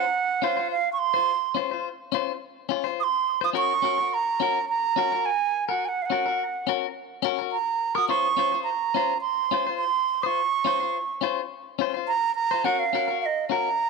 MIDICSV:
0, 0, Header, 1, 4, 480
1, 0, Start_track
1, 0, Key_signature, -5, "minor"
1, 0, Tempo, 568720
1, 1081, Time_signature, 4, 2, 24, 8
1, 11728, End_track
2, 0, Start_track
2, 0, Title_t, "Flute"
2, 0, Program_c, 0, 73
2, 0, Note_on_c, 0, 78, 105
2, 365, Note_on_c, 0, 77, 94
2, 378, Note_off_c, 0, 78, 0
2, 596, Note_off_c, 0, 77, 0
2, 601, Note_on_c, 0, 77, 99
2, 775, Note_off_c, 0, 77, 0
2, 782, Note_on_c, 0, 85, 76
2, 834, Note_on_c, 0, 84, 107
2, 847, Note_off_c, 0, 85, 0
2, 1317, Note_off_c, 0, 84, 0
2, 2533, Note_on_c, 0, 87, 96
2, 2563, Note_on_c, 0, 84, 104
2, 2571, Note_off_c, 0, 87, 0
2, 2869, Note_off_c, 0, 84, 0
2, 2907, Note_on_c, 0, 87, 107
2, 2952, Note_off_c, 0, 87, 0
2, 3014, Note_on_c, 0, 85, 117
2, 3494, Note_on_c, 0, 82, 100
2, 3506, Note_off_c, 0, 85, 0
2, 3955, Note_off_c, 0, 82, 0
2, 3960, Note_on_c, 0, 82, 105
2, 4435, Note_on_c, 0, 80, 99
2, 4448, Note_off_c, 0, 82, 0
2, 4790, Note_off_c, 0, 80, 0
2, 4795, Note_on_c, 0, 78, 88
2, 4939, Note_on_c, 0, 80, 81
2, 4947, Note_off_c, 0, 78, 0
2, 4967, Note_on_c, 0, 78, 88
2, 4976, Note_off_c, 0, 80, 0
2, 5082, Note_on_c, 0, 77, 81
2, 5091, Note_off_c, 0, 78, 0
2, 5111, Note_on_c, 0, 78, 88
2, 5119, Note_off_c, 0, 77, 0
2, 5724, Note_off_c, 0, 78, 0
2, 6346, Note_on_c, 0, 82, 98
2, 6711, Note_on_c, 0, 87, 104
2, 6724, Note_off_c, 0, 82, 0
2, 6820, Note_off_c, 0, 87, 0
2, 6826, Note_on_c, 0, 85, 119
2, 7275, Note_off_c, 0, 85, 0
2, 7289, Note_on_c, 0, 82, 92
2, 7747, Note_off_c, 0, 82, 0
2, 7776, Note_on_c, 0, 84, 96
2, 8231, Note_off_c, 0, 84, 0
2, 8252, Note_on_c, 0, 84, 95
2, 8632, Note_on_c, 0, 87, 95
2, 8644, Note_off_c, 0, 84, 0
2, 8664, Note_on_c, 0, 85, 103
2, 8673, Note_off_c, 0, 87, 0
2, 9598, Note_off_c, 0, 85, 0
2, 10193, Note_on_c, 0, 82, 107
2, 10417, Note_off_c, 0, 82, 0
2, 10424, Note_on_c, 0, 82, 113
2, 10674, Note_on_c, 0, 78, 111
2, 10687, Note_off_c, 0, 82, 0
2, 10798, Note_on_c, 0, 77, 103
2, 10811, Note_off_c, 0, 78, 0
2, 11146, Note_off_c, 0, 77, 0
2, 11151, Note_on_c, 0, 77, 85
2, 11190, Note_on_c, 0, 75, 93
2, 11198, Note_off_c, 0, 77, 0
2, 11377, Note_off_c, 0, 75, 0
2, 11390, Note_on_c, 0, 82, 116
2, 11728, Note_off_c, 0, 82, 0
2, 11728, End_track
3, 0, Start_track
3, 0, Title_t, "Clean electric guitar"
3, 0, Program_c, 1, 27
3, 354, Note_on_c, 1, 61, 58
3, 366, Note_on_c, 1, 65, 73
3, 371, Note_on_c, 1, 72, 72
3, 469, Note_off_c, 1, 72, 0
3, 479, Note_on_c, 1, 72, 58
3, 488, Note_off_c, 1, 61, 0
3, 490, Note_off_c, 1, 65, 0
3, 500, Note_on_c, 1, 65, 48
3, 622, Note_off_c, 1, 72, 0
3, 632, Note_off_c, 1, 65, 0
3, 960, Note_on_c, 1, 72, 54
3, 982, Note_on_c, 1, 65, 47
3, 1102, Note_off_c, 1, 72, 0
3, 1113, Note_off_c, 1, 65, 0
3, 1305, Note_on_c, 1, 61, 64
3, 1316, Note_on_c, 1, 65, 66
3, 1325, Note_on_c, 1, 72, 73
3, 1436, Note_off_c, 1, 72, 0
3, 1442, Note_off_c, 1, 61, 0
3, 1446, Note_on_c, 1, 72, 67
3, 1447, Note_off_c, 1, 65, 0
3, 1463, Note_on_c, 1, 65, 48
3, 1584, Note_off_c, 1, 72, 0
3, 1593, Note_off_c, 1, 65, 0
3, 1789, Note_on_c, 1, 61, 74
3, 1806, Note_on_c, 1, 65, 76
3, 1812, Note_on_c, 1, 72, 83
3, 1946, Note_off_c, 1, 61, 0
3, 1954, Note_off_c, 1, 65, 0
3, 1957, Note_off_c, 1, 72, 0
3, 2270, Note_on_c, 1, 61, 68
3, 2283, Note_on_c, 1, 65, 75
3, 2397, Note_on_c, 1, 72, 63
3, 2403, Note_off_c, 1, 61, 0
3, 2407, Note_off_c, 1, 65, 0
3, 2417, Note_on_c, 1, 65, 51
3, 2538, Note_off_c, 1, 72, 0
3, 2548, Note_off_c, 1, 65, 0
3, 2880, Note_on_c, 1, 72, 65
3, 2902, Note_on_c, 1, 65, 48
3, 2982, Note_on_c, 1, 61, 82
3, 2988, Note_off_c, 1, 65, 0
3, 2991, Note_on_c, 1, 66, 80
3, 2993, Note_off_c, 1, 72, 0
3, 2997, Note_on_c, 1, 70, 97
3, 3141, Note_off_c, 1, 61, 0
3, 3145, Note_off_c, 1, 66, 0
3, 3148, Note_off_c, 1, 70, 0
3, 3226, Note_on_c, 1, 61, 69
3, 3238, Note_on_c, 1, 66, 70
3, 3249, Note_on_c, 1, 70, 71
3, 3349, Note_off_c, 1, 70, 0
3, 3360, Note_on_c, 1, 70, 55
3, 3361, Note_off_c, 1, 61, 0
3, 3367, Note_off_c, 1, 66, 0
3, 3378, Note_on_c, 1, 66, 46
3, 3499, Note_off_c, 1, 70, 0
3, 3508, Note_off_c, 1, 66, 0
3, 3713, Note_on_c, 1, 61, 62
3, 3723, Note_on_c, 1, 66, 63
3, 3734, Note_on_c, 1, 70, 71
3, 3865, Note_off_c, 1, 61, 0
3, 3870, Note_off_c, 1, 66, 0
3, 3876, Note_off_c, 1, 70, 0
3, 4188, Note_on_c, 1, 61, 63
3, 4198, Note_on_c, 1, 66, 72
3, 4208, Note_on_c, 1, 70, 79
3, 4312, Note_off_c, 1, 70, 0
3, 4320, Note_off_c, 1, 61, 0
3, 4322, Note_on_c, 1, 70, 65
3, 4326, Note_off_c, 1, 66, 0
3, 4345, Note_on_c, 1, 66, 50
3, 4459, Note_off_c, 1, 70, 0
3, 4470, Note_off_c, 1, 66, 0
3, 4799, Note_on_c, 1, 70, 59
3, 4820, Note_on_c, 1, 66, 46
3, 4937, Note_off_c, 1, 70, 0
3, 4948, Note_off_c, 1, 66, 0
3, 5148, Note_on_c, 1, 61, 60
3, 5160, Note_on_c, 1, 66, 71
3, 5168, Note_on_c, 1, 70, 68
3, 5271, Note_off_c, 1, 70, 0
3, 5280, Note_off_c, 1, 61, 0
3, 5281, Note_on_c, 1, 70, 54
3, 5286, Note_off_c, 1, 66, 0
3, 5299, Note_on_c, 1, 66, 42
3, 5418, Note_off_c, 1, 70, 0
3, 5427, Note_off_c, 1, 66, 0
3, 5628, Note_on_c, 1, 61, 69
3, 5642, Note_on_c, 1, 66, 71
3, 5648, Note_on_c, 1, 70, 70
3, 5782, Note_off_c, 1, 61, 0
3, 5789, Note_off_c, 1, 66, 0
3, 5792, Note_off_c, 1, 70, 0
3, 6097, Note_on_c, 1, 61, 75
3, 6115, Note_on_c, 1, 66, 82
3, 6122, Note_on_c, 1, 70, 80
3, 6224, Note_off_c, 1, 70, 0
3, 6234, Note_on_c, 1, 70, 61
3, 6235, Note_off_c, 1, 61, 0
3, 6243, Note_off_c, 1, 66, 0
3, 6258, Note_on_c, 1, 66, 51
3, 6374, Note_off_c, 1, 70, 0
3, 6386, Note_off_c, 1, 66, 0
3, 6710, Note_on_c, 1, 70, 65
3, 6734, Note_on_c, 1, 66, 48
3, 6824, Note_on_c, 1, 61, 75
3, 6826, Note_off_c, 1, 70, 0
3, 6827, Note_off_c, 1, 66, 0
3, 6831, Note_on_c, 1, 65, 89
3, 6839, Note_on_c, 1, 72, 82
3, 6980, Note_off_c, 1, 61, 0
3, 6983, Note_off_c, 1, 65, 0
3, 6987, Note_off_c, 1, 72, 0
3, 7061, Note_on_c, 1, 61, 69
3, 7072, Note_on_c, 1, 65, 64
3, 7081, Note_on_c, 1, 72, 68
3, 7180, Note_off_c, 1, 72, 0
3, 7190, Note_on_c, 1, 72, 52
3, 7196, Note_off_c, 1, 61, 0
3, 7200, Note_off_c, 1, 65, 0
3, 7210, Note_on_c, 1, 65, 44
3, 7332, Note_off_c, 1, 72, 0
3, 7342, Note_off_c, 1, 65, 0
3, 7549, Note_on_c, 1, 61, 62
3, 7560, Note_on_c, 1, 65, 64
3, 7569, Note_on_c, 1, 72, 67
3, 7703, Note_off_c, 1, 61, 0
3, 7708, Note_off_c, 1, 65, 0
3, 7712, Note_off_c, 1, 72, 0
3, 8028, Note_on_c, 1, 61, 61
3, 8037, Note_on_c, 1, 65, 66
3, 8049, Note_on_c, 1, 72, 65
3, 8147, Note_off_c, 1, 72, 0
3, 8157, Note_on_c, 1, 72, 57
3, 8160, Note_off_c, 1, 61, 0
3, 8164, Note_off_c, 1, 65, 0
3, 8178, Note_on_c, 1, 65, 47
3, 8296, Note_off_c, 1, 72, 0
3, 8307, Note_off_c, 1, 65, 0
3, 8637, Note_on_c, 1, 72, 61
3, 8660, Note_on_c, 1, 65, 49
3, 8777, Note_off_c, 1, 72, 0
3, 8788, Note_off_c, 1, 65, 0
3, 8985, Note_on_c, 1, 61, 69
3, 8994, Note_on_c, 1, 65, 68
3, 9006, Note_on_c, 1, 72, 71
3, 9106, Note_off_c, 1, 72, 0
3, 9116, Note_on_c, 1, 72, 55
3, 9119, Note_off_c, 1, 61, 0
3, 9124, Note_off_c, 1, 65, 0
3, 9139, Note_on_c, 1, 65, 50
3, 9256, Note_off_c, 1, 72, 0
3, 9267, Note_off_c, 1, 65, 0
3, 9462, Note_on_c, 1, 61, 64
3, 9475, Note_on_c, 1, 65, 76
3, 9483, Note_on_c, 1, 72, 77
3, 9620, Note_off_c, 1, 61, 0
3, 9626, Note_off_c, 1, 65, 0
3, 9630, Note_off_c, 1, 72, 0
3, 9948, Note_on_c, 1, 61, 76
3, 9961, Note_on_c, 1, 65, 73
3, 9971, Note_on_c, 1, 72, 82
3, 10068, Note_off_c, 1, 72, 0
3, 10078, Note_on_c, 1, 72, 64
3, 10081, Note_off_c, 1, 61, 0
3, 10088, Note_off_c, 1, 65, 0
3, 10100, Note_on_c, 1, 65, 52
3, 10218, Note_off_c, 1, 72, 0
3, 10229, Note_off_c, 1, 65, 0
3, 10558, Note_on_c, 1, 72, 57
3, 10580, Note_on_c, 1, 65, 44
3, 10671, Note_on_c, 1, 61, 76
3, 10672, Note_off_c, 1, 72, 0
3, 10677, Note_off_c, 1, 65, 0
3, 10680, Note_on_c, 1, 66, 82
3, 10685, Note_on_c, 1, 70, 88
3, 10825, Note_off_c, 1, 61, 0
3, 10830, Note_off_c, 1, 66, 0
3, 10832, Note_off_c, 1, 70, 0
3, 10912, Note_on_c, 1, 61, 66
3, 10925, Note_on_c, 1, 66, 66
3, 10933, Note_on_c, 1, 70, 71
3, 11028, Note_off_c, 1, 70, 0
3, 11038, Note_on_c, 1, 70, 58
3, 11044, Note_off_c, 1, 61, 0
3, 11051, Note_off_c, 1, 66, 0
3, 11060, Note_on_c, 1, 66, 50
3, 11179, Note_off_c, 1, 70, 0
3, 11190, Note_off_c, 1, 66, 0
3, 11390, Note_on_c, 1, 61, 59
3, 11402, Note_on_c, 1, 66, 62
3, 11410, Note_on_c, 1, 70, 70
3, 11546, Note_off_c, 1, 61, 0
3, 11552, Note_off_c, 1, 66, 0
3, 11556, Note_off_c, 1, 70, 0
3, 11728, End_track
4, 0, Start_track
4, 0, Title_t, "Muted clean electric guitar strokes"
4, 2295, Note_on_c, 9, 29, 75
4, 2379, Note_off_c, 9, 29, 0
4, 11728, End_track
0, 0, End_of_file